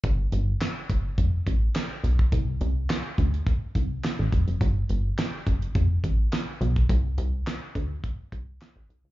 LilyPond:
<<
  \new Staff \with { instrumentName = "Analog synth bass" } { \clef bass \time 4/4 \key d \mixolydian \tempo 4 = 105 g,,8 g,,8 r8 fis,,8 f,,8 a,,8 r8 b,,8 | c,8 c,8 r8 d,8 r8 c,8 r16 a,,16 f,,16 fis,,16 | g,,8 g,,8 r8 fis,,8 f,,8 a,,8 r8 b,,8 | c,8 c,8 r8 d,8 r8 c,8 r16 a,,16 c,16 cis,16 | }
  \new DrumStaff \with { instrumentName = "Drums" } \drummode { \time 4/4 <hh bd>8 hh8 <hc hh sn>8 <hh bd>8 <hh bd>8 <hh bd>8 <hc hh sn>8 hh16 bd16 | <hh bd>8 hh8 <hc hh sn>8 <hh bd>16 hh16 <hh bd>8 <hh bd>8 <hc hh sn>8 <hh bd>16 hh16 | <hh bd>8 hh8 <hc hh sn>8 <hh bd>16 hh16 <hh bd>8 <hh bd>8 <hc hh sn>8 hh16 <hh bd>16 | <hh bd>8 hh8 <hc hh sn>8 <hh bd>8 <hh bd>8 <hh bd>8 <hc hh sn>8 hh8 | }
>>